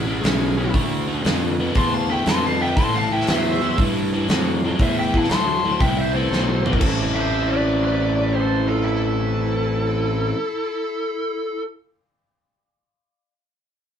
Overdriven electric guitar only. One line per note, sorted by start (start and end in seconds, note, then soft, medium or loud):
0.06 0.21 E2 medium
0.06 0.22 B2 medium
0.22 0.54 E2 medium
0.22 0.54 C#3 medium
0.57 0.73 E2 medium
0.57 0.73 C#3 medium
0.74 1.05 D3 medium
0.74 1.06 A3 loud
1.07 1.23 D3 medium
1.07 1.23 A3 medium
1.24 1.56 D3 medium
1.24 1.56 B3 medium
1.60 1.75 D3 medium
1.60 1.75 B3 medium
1.76 2.07 D3 medium
1.76 2.07 A3 medium
2.09 2.25 D3 medium
2.09 2.25 A3 medium
2.26 2.57 D3 medium
2.26 2.58 B3 medium
2.60 2.75 D3 medium
2.60 2.76 B3 medium
2.78 3.09 A2 loud
2.78 3.09 E3 medium
3.12 3.26 A2 medium
3.12 3.27 E3 medium
3.28 3.59 A2 medium
3.28 3.59 F#3 medium
3.62 3.77 A2 medium
3.62 3.77 F#3 medium
3.79 4.10 A2 medium
3.79 4.10 E3 medium
4.13 4.28 A2 medium
4.13 4.28 E3 medium
4.30 4.60 A2 medium
4.30 4.60 F#3 medium
4.64 4.78 A2 medium
4.64 4.79 F#3 medium
4.80 5.11 A2 medium
4.80 5.11 E3 medium
5.14 5.29 A2 medium
5.14 5.29 E3 medium
5.30 5.61 A2 medium
5.30 5.61 F#3 medium
5.65 5.79 A2 medium
5.65 5.79 F#3 medium
5.80 6.12 A2 medium
5.80 6.12 E3 loud
6.15 6.30 A2 medium
6.15 6.30 E3 medium
6.32 6.62 A2 medium
6.32 6.63 F#3 medium
6.65 6.78 A2 medium
6.65 6.80 F#3 medium
6.79 10.33 A2 medium
6.79 10.34 E3 loud
6.79 10.35 A3 loud
6.79 10.36 C4 medium
6.79 10.37 E4 loud
6.83 10.37 A4 loud